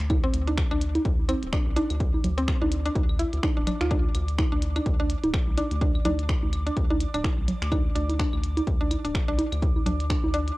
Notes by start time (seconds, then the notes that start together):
Already playing: D6
0.00 D2
0.10 kick, closed hi-hat, high conga, claves
0.24 C4
0.34 D2, closed hi-hat
0.47 D4, closed hi-hat, high conga
0.58 finger snap, kick, closed hi-hat
0.71 D2 D4, claves
0.81 closed hi-hat
0.95 closed hi-hat, high conga
1.05 D2, kick, closed hi-hat
1.29 C4, closed hi-hat, high conga, claves
1.43 D1, closed hi-hat
1.53 D4, finger snap, kick, closed hi-hat
1.67 C2
1.76 D4, closed hi-hat, high conga
1.90 D2, closed hi-hat, claves
2.00 kick, closed hi-hat
2.14 high conga
2.24 D2, closed hi-hat, low conga
2.38 C4, closed hi-hat
2.48 finger snap, kick, closed hi-hat, claves
2.62 D2 D4, high conga
2.72 closed hi-hat
2.86 D4, closed hi-hat
2.95 D2, kick, closed hi-hat, high conga
3.09 claves
3.19 E4, closed hi-hat
3.33 D2, closed hi-hat
3.43 D4, finger snap, kick, closed hi-hat, high conga
3.57 D1 D4
3.67 D4, closed hi-hat, low conga, claves
3.81 D2 F4, finger snap, closed hi-hat, high conga
3.91 D4, kick, closed hi-hat, high conga
4.15 D2, closed hi-hat, claves
4.28 closed hi-hat
4.38 finger snap, kick, closed hi-hat, high conga
4.52 D2 D4
4.62 closed hi-hat
4.76 D4, closed hi-hat, high conga, claves
4.86 D2, kick, closed hi-hat
5.00 D4
5.10 closed hi-hat
5.24 D1, closed hi-hat, high conga
5.34 finger snap, kick, closed hi-hat, claves
5.47 C2
5.58 D4, closed hi-hat, high conga
5.71 D2, closed hi-hat
5.81 D4, kick, closed hi-hat
5.95 claves
6.05 D2 D4, closed hi-hat, high conga, low conga
6.19 closed hi-hat
6.29 finger snap, kick, closed hi-hat
6.43 D2, high conga
6.53 closed hi-hat, claves
6.66 D4, closed hi-hat
6.77 D2, kick, closed hi-hat
6.90 D4, high conga
7.00 closed hi-hat
7.14 D1 D4, closed hi-hat, claves
7.24 finger snap, kick, closed hi-hat, high conga
7.38 C2
7.48 closed hi-hat, low conga
7.62 D2, finger snap, closed hi-hat
7.72 D4, kick, closed hi-hat, high conga, claves
7.95 D2 D4, closed hi-hat
8.09 closed hi-hat, high conga
8.19 D4, finger snap, kick, closed hi-hat
8.33 D2, claves
8.43 closed hi-hat
8.57 closed hi-hat, high conga
8.67 D2, kick, closed hi-hat
8.81 D4
8.91 closed hi-hat, high conga, claves
9.05 D1 D4, closed hi-hat
9.15 finger snap, kick, closed hi-hat
9.28 C2 D4
9.38 closed hi-hat, high conga
9.52 D2, closed hi-hat, claves
9.62 kick, closed hi-hat
9.76 high conga
9.86 D2 D4, closed hi-hat, low conga
10.00 closed hi-hat
10.10 D4, finger snap, kick, closed hi-hat, claves
10.24 D2, high conga
10.34 D4, closed hi-hat
10.48 closed hi-hat